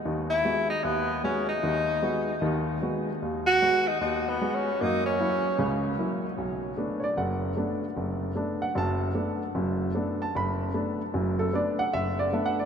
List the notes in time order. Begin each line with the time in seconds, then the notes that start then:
0.05 D#2 D#3
0.30 E4
0.45 G#3 B3 F#4
0.70 D#4
0.84 D#2 B3
1.24 G#3 B3 C#4 F#4
1.49 D#4
1.63 D#2 D#3
2.02 G#3 B3 F#4
2.42 D#2 D#3
2.82 G#3 B3 F#4
3.22 D#2
3.47 F#4
3.62 G#3 B3 F#4
3.88 D#4
4.00 D#2 D#4
4.29 B3
4.41 G#3 B3 F#4
4.55 C#4
4.81 F#2 A#3 D#4
5.06 C#4
5.20 F#3 A#3 E4
5.59 C#2 C#3
5.98 F#3 A#3 E4
6.38 B1
6.77 A3 B3 D4
7.00 C#5
7.04 D5
7.17 F#1 F#5
7.57 A3 B3 D4
7.97 F#1
8.36 A3 B3 D4
8.62 F#5
8.75 F#1 F#2 A5
9.15 A3 B3 D4
9.55 F#1 F#2
9.95 A3 B3 D4
10.22 A5
10.35 F#1 B5
10.74 A3 B3 D4
11.14 F#1 F#2
11.39 A4
11.53 A3 B3 D4 D5
11.79 F#5
11.93 F#1 E5
12.19 D5
12.33 A3 B3 D4 E5
12.46 F#5
12.60 D5